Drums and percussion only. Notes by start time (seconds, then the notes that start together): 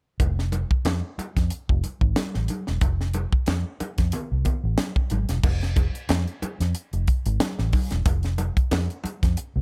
0.20 kick, closed hi-hat, muted conga
0.39 snare
0.52 closed hi-hat, muted conga
0.71 kick
0.85 snare, closed hi-hat, high conga
1.19 closed hi-hat, muted conga
1.37 kick, snare, closed hi-hat
1.50 closed hi-hat
1.69 kick
1.84 closed hi-hat, muted conga
2.01 kick
2.16 snare, closed hi-hat, high conga
2.34 snare
2.48 closed hi-hat, high conga
2.67 snare
2.81 kick, closed hi-hat, muted conga
3.01 snare
3.13 closed hi-hat, muted conga
3.33 kick
3.46 snare, closed hi-hat, high conga
3.80 closed hi-hat, muted conga
3.98 kick, snare, closed hi-hat
4.12 closed hi-hat, low conga
4.45 kick, closed hi-hat, low conga
4.78 snare, closed hi-hat, high conga
4.96 kick
5.10 closed hi-hat, high conga
5.29 snare, closed hi-hat
5.43 kick, crash, muted conga
5.61 snare, closed hi-hat
5.76 kick, closed hi-hat, muted conga
5.95 closed hi-hat
6.09 snare, closed hi-hat, high conga
6.28 closed hi-hat
6.42 closed hi-hat, muted conga
6.61 snare, closed hi-hat
6.75 closed hi-hat
6.93 closed hi-hat
7.08 kick, closed hi-hat
7.26 closed hi-hat
7.40 snare, closed hi-hat, high conga
7.59 snare
7.73 kick, open hi-hat, high conga
7.91 snare, closed hi-hat
8.06 kick, closed hi-hat, muted conga
8.23 snare, closed hi-hat
8.38 closed hi-hat, muted conga
8.57 kick, closed hi-hat
8.71 snare, closed hi-hat, high conga
8.90 closed hi-hat
9.04 closed hi-hat, muted conga
9.23 kick, snare, closed hi-hat
9.37 closed hi-hat